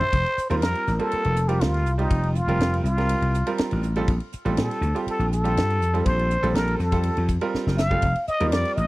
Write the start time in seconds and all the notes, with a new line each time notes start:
Already playing: C5
0.01 floor tom
0.13 F1, kick, ride
0.26 ride
0.37 muted slap bass stroke, hi-hat pedal
0.50 D#2 G3 C4 F4 A#4 C5, ride
0.61 F2 A#4, snare, ride
0.75 ride
0.87 A1, snare, hi-hat pedal
0.99 G3 A#3 C4 F4 A4, ride
1.11 muted slap bass stroke, ride
1.24 F1, ride
1.36 hi-hat pedal
1.48 G3 C4 F4 G4 A#4, ride
1.60 D2 F4, snare, ride
1.74 snare, ride
1.86 C2, hi-hat pedal
1.98 G3 C4 D#4 F4 G4, ride
2.10 F1, kick, ride
2.23 ride
2.35 F4, hi-hat pedal
2.47 F1 G3 C4 F4 A#4, ride
2.59 F1, snare, ride
2.74 ride
2.84 C2 F4, hi-hat pedal
2.98 G3 C4 F4 A#4, snare, ride
3.09 ride
3.22 C2, ride
3.34 hi-hat pedal
3.47 G3 C4 F4 A#4, ride
3.58 A#5, muted slap bass stroke, snare, ride
3.71 A1, ride
3.83 hi-hat pedal
3.96 G3 C4 F4 A4, ride
4.08 A#1, kick, ride
4.20 ride
4.32 muted slap bass stroke, hi-hat pedal
4.45 A1 G3 C4 F4 A4, ride
4.57 A#2 A4, snare, ride
4.71 snare, ride
4.81 D2, hi-hat pedal
4.94 G3 C4 F4 G4, ride
5.07 A4, muted slap bass stroke, ride
5.19 A#1, ride
5.32 A4, hi-hat pedal
5.44 G3 C4 F4 G4, ride
5.56 G2, snare, ride
5.70 ride
5.81 F2, hi-hat pedal
5.93 G3 C4 F4 A4, ride
6.05 A#1 C5, kick, ride
6.19 ride
6.30 hi-hat pedal
6.42 A#1 G3 C4 F4 A4, ride
6.54 A#1 A#4, snare, ride
6.68 ride
6.79 F2 A4, snare, hi-hat pedal
6.91 G3 C4 F4 A4, kick, ride
7.03 ride
7.17 F2, ride
7.28 kick, hi-hat pedal
7.41 G3 C4 F4 A#4, ride
7.54 muted slap bass stroke, snare
7.67 F#1, snare
7.78 F5, snare, hi-hat pedal
7.90 G3 C4 F4 A4, kick
8.02 F1, kick, ride
8.15 ride
8.27 D#5, muted slap bass stroke, hi-hat pedal
8.40 D#2 G3 C4 F4 A#4, ride
8.52 F2 D5, snare, ride
8.65 snare, ride
8.76 A1 D#5, hi-hat pedal